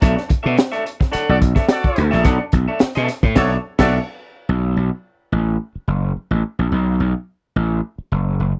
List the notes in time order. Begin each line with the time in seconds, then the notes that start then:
0.01 B1 D4 A4 C#5 E5, kick, closed hi-hat
0.16 muted clean electric guitar stroke, snare
0.29 muted clean electric guitar stroke, muted slap bass stroke, kick, closed hi-hat
0.43 B2 D4 A4 C#5 E5
0.57 muted clean electric guitar stroke, snare, closed hi-hat
0.72 D4 A4 C#5 E5, closed hi-hat
0.85 muted clean electric guitar stroke, closed hi-hat
1.00 muted clean electric guitar stroke, kick, snare
1.12 D4 A4 C#5 F#5, muted slap bass stroke, closed hi-hat
1.29 B1 F#4 A4 D5
1.40 muted clean electric guitar stroke, kick, closed hi-hat
1.55 D4 A4 C#5 E5, kick, snare
1.69 F#4 A4 D5, snare, closed hi-hat
1.83 muted clean electric guitar stroke, kick
1.96 D2, closed hi-hat
2.11 A#1 D4 A4 C#5 E5, snare
2.24 B1 D4 A4 C#5 F#5, kick, closed hi-hat
2.39 muted clean electric guitar stroke
2.52 B1, muted clean electric guitar stroke, kick, closed hi-hat
2.68 D4 A4 C#5 E5
2.79 muted clean electric guitar stroke, muted slap bass stroke, snare, closed hi-hat
2.95 B2 D4 A4 C#5 E5, closed hi-hat
3.08 muted clean electric guitar stroke, snare, closed hi-hat
3.23 A2, muted clean electric guitar stroke, kick
3.35 B1 D4 F#4 A4 C#5 E5, kick, snare, crash
3.78 B1 D4 F#4 A4 C#5 D5 E5, kick, snare, crash
4.49 B1
4.77 B1
5.32 A1
5.75 muted slap bass stroke
5.88 F#1
6.16 muted slap bass stroke
6.31 A1
6.59 A#1
6.72 B1
7.00 B1
7.56 A1
7.98 muted slap bass stroke
8.12 F#1
8.40 F#1